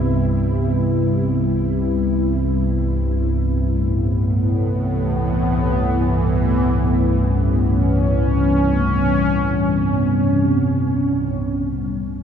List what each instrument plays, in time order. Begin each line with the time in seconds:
Already playing: synth drone C2 G2, analog synth pad C3 G3 C4 E4, singing bowl B3 B4
3.39 analog synth pad A2
3.79 analog synth pad B3
4.66 analog synth pad E3
7.16 analog synth pad C#4
11.89 synth drone C2 G2